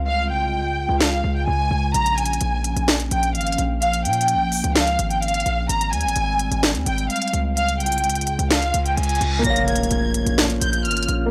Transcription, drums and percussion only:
1.00 finger snap loud
1.00 snare loud
1.94 closed hi-hat medium
2.06 closed hi-hat medium
2.18 closed hi-hat medium
2.25 closed hi-hat medium
2.33 closed hi-hat medium
2.41 closed hi-hat medium
2.64 closed hi-hat medium
2.77 closed hi-hat medium
2.88 finger snap loud
2.88 snare loud
2.88 closed hi-hat medium
3.00 closed hi-hat medium
3.11 closed hi-hat medium
3.23 closed hi-hat medium
3.35 closed hi-hat medium
3.41 closed hi-hat medium
3.47 closed hi-hat medium
3.52 closed hi-hat medium
3.58 closed hi-hat medium
3.82 closed hi-hat medium
3.93 closed hi-hat medium
4.05 closed hi-hat medium
4.13 closed hi-hat medium
4.21 closed hi-hat medium
4.28 closed hi-hat medium
4.52 open hi-hat medium
4.64 closed hi-hat medium
4.76 finger snap loud
4.76 snare loud
4.76 closed hi-hat medium
4.87 closed hi-hat medium
4.99 closed hi-hat medium
5.11 closed hi-hat medium
5.22 closed hi-hat medium
5.28 closed hi-hat medium
5.34 closed hi-hat medium
5.40 closed hi-hat medium
5.46 closed hi-hat medium
5.69 closed hi-hat medium
5.81 closed hi-hat medium
5.93 closed hi-hat medium
6.01 closed hi-hat medium
6.08 closed hi-hat medium
6.16 closed hi-hat medium
6.39 closed hi-hat medium
6.52 closed hi-hat medium
6.63 finger snap loud
6.63 snare loud
6.63 closed hi-hat medium
6.75 closed hi-hat medium
6.86 closed hi-hat medium
6.98 closed hi-hat medium
7.10 closed hi-hat medium
7.16 closed hi-hat medium
7.22 closed hi-hat medium
7.28 closed hi-hat medium
7.33 closed hi-hat medium
7.57 closed hi-hat medium
7.69 closed hi-hat medium
7.80 closed hi-hat medium
7.86 closed hi-hat medium
7.92 closed hi-hat medium
7.98 closed hi-hat medium
8.04 closed hi-hat medium
8.10 closed hi-hat medium
8.15 closed hi-hat medium
8.21 closed hi-hat medium
8.27 closed hi-hat medium
8.39 closed hi-hat medium
8.51 finger snap loud
8.51 snare loud
8.51 closed hi-hat medium
8.62 closed hi-hat medium
8.74 closed hi-hat medium
8.86 closed hi-hat medium
8.97 closed hi-hat medium
9.03 closed hi-hat medium
9.09 closed hi-hat medium
9.15 closed hi-hat medium
9.21 closed hi-hat medium
9.44 closed hi-hat medium
9.56 closed hi-hat medium
9.68 closed hi-hat medium
9.76 closed hi-hat medium
9.83 closed hi-hat medium
9.91 closed hi-hat medium
10.14 closed hi-hat medium
10.27 closed hi-hat medium
10.38 finger snap loud
10.38 snare loud
10.38 closed hi-hat medium
10.50 closed hi-hat medium
10.61 closed hi-hat medium
10.73 closed hi-hat medium
10.85 closed hi-hat medium
10.91 closed hi-hat medium
10.97 closed hi-hat medium
11.03 closed hi-hat medium
11.08 closed hi-hat medium

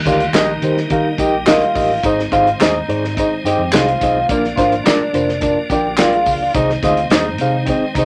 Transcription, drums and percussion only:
0.06 kick medium
0.06 snare soft
0.06 closed hi-hat medium
0.06 tambourine medium
0.20 closed hi-hat soft
0.34 snare loud
0.34 clap medium
0.34 closed hi-hat medium
0.34 tambourine medium
0.62 closed hi-hat medium
0.62 tambourine soft
0.77 snare soft
0.90 kick medium
0.90 closed hi-hat medium
1.18 kick medium
1.18 closed hi-hat medium
1.18 tambourine medium
1.47 snare loud
1.47 clap medium
1.47 closed hi-hat medium
1.47 tambourine medium
1.62 closed hi-hat soft
1.75 kick loud
1.75 open hi-hat medium
1.75 tambourine medium
2.03 kick loud
2.03 closed hi-hat medium
2.03 tambourine medium
2.19 snare soft
2.32 kick medium
2.32 closed hi-hat medium
2.32 tambourine medium
2.47 closed hi-hat soft
2.60 snare loud
2.60 clap medium
2.60 closed hi-hat medium
2.60 tambourine medium
2.90 closed hi-hat medium
3.04 snare soft
3.17 kick loud
3.17 closed hi-hat medium
3.17 tambourine soft
3.46 closed hi-hat medium
3.46 tambourine medium
3.72 snare loud
3.72 clap loud
3.72 closed hi-hat medium
3.72 tambourine medium
3.88 closed hi-hat soft
4.01 kick medium
4.01 closed hi-hat medium
4.01 tambourine medium
4.29 kick loud
4.29 closed hi-hat medium
4.29 tambourine medium
4.44 snare soft
4.57 kick loud
4.57 snare soft
4.57 closed hi-hat medium
4.57 tambourine medium
4.72 closed hi-hat soft
4.86 snare loud
4.86 clap loud
4.86 closed hi-hat medium
4.86 tambourine medium
5.14 closed hi-hat medium
5.14 tambourine soft
5.29 snare soft
5.41 kick medium
5.41 closed hi-hat medium
5.41 tambourine soft
5.70 kick loud
5.70 closed hi-hat medium
5.70 tambourine medium
5.97 snare loud
5.97 clap medium
5.97 closed hi-hat medium
5.97 tambourine medium
6.13 closed hi-hat soft
6.26 kick loud
6.26 open hi-hat medium
6.26 tambourine medium
6.55 kick loud
6.55 closed hi-hat medium
6.55 tambourine medium
6.70 snare soft
6.83 kick loud
6.83 snare soft
6.83 closed hi-hat medium
6.83 tambourine medium
6.97 closed hi-hat soft
7.10 snare loud
7.10 clap medium
7.10 closed hi-hat medium
7.10 tambourine loud
7.38 closed hi-hat medium
7.38 tambourine soft
7.67 kick loud
7.67 closed hi-hat medium
7.67 tambourine soft
7.95 kick loud
7.95 closed hi-hat medium
7.95 tambourine medium

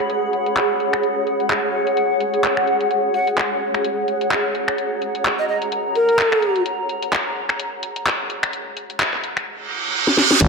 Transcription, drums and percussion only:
0.10 closed hi-hat medium
0.33 closed hi-hat medium
0.46 closed hi-hat soft
0.57 clap loud
0.57 closed hi-hat medium
0.80 closed hi-hat soft
0.93 finger snap medium
0.93 closed hi-hat soft
1.03 closed hi-hat medium
1.27 closed hi-hat soft
1.40 closed hi-hat soft
1.50 clap loud
1.50 closed hi-hat medium
1.87 closed hi-hat soft
1.97 closed hi-hat medium
2.21 closed hi-hat medium
2.34 closed hi-hat soft
2.44 clap loud
2.44 closed hi-hat medium
2.57 finger snap medium
2.67 closed hi-hat soft
2.81 closed hi-hat soft
2.91 closed hi-hat medium
3.14 closed hi-hat soft
3.27 closed hi-hat soft
3.38 clap loud
3.38 closed hi-hat medium
3.74 finger snap medium
3.74 closed hi-hat soft
3.85 closed hi-hat medium
4.08 closed hi-hat medium
4.21 closed hi-hat soft
4.31 clap loud
4.31 closed hi-hat medium
4.55 closed hi-hat soft
4.68 finger snap medium
4.68 closed hi-hat soft
4.78 closed hi-hat medium
5.02 closed hi-hat soft
5.15 closed hi-hat soft
5.25 clap loud
5.25 closed hi-hat medium
5.62 closed hi-hat soft
5.72 closed hi-hat medium
5.95 closed hi-hat medium
6.09 closed hi-hat soft
6.19 clap loud
6.19 closed hi-hat medium
6.32 finger snap medium
6.42 closed hi-hat soft
6.56 closed hi-hat soft
6.66 closed hi-hat medium
6.89 closed hi-hat soft
7.02 closed hi-hat soft
7.13 clap loud
7.13 closed hi-hat medium
7.49 finger snap medium
7.49 closed hi-hat soft
7.60 closed hi-hat medium
7.83 closed hi-hat medium
7.96 closed hi-hat soft
8.06 clap loud
8.06 closed hi-hat medium
8.30 closed hi-hat soft
8.43 finger snap medium
8.43 closed hi-hat medium
8.53 closed hi-hat medium
8.77 closed hi-hat soft
8.90 closed hi-hat soft
9.00 clap loud
9.00 closed hi-hat medium
9.13 clap soft
9.24 closed hi-hat soft
9.37 finger snap medium
9.37 closed hi-hat soft
10.07 snare soft
10.17 snare medium
10.31 snare medium
10.41 kick loud
10.41 closed hi-hat medium

